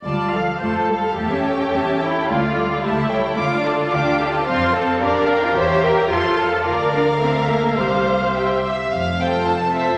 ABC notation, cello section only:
X:1
M:2/4
L:1/16
Q:1/4=109
K:Dm
V:1 name="Cello section"
G,2 F,2 A,2 G,2 | A, ^C3 C2 E2 | A,2 G,2 A,2 G,2 | A, D3 D2 F2 |
[K:F] C4 D3 F | G4 F3 A | F2 D2 C2 B,2 | G,4 z4 |
F,,4 F,,4 |]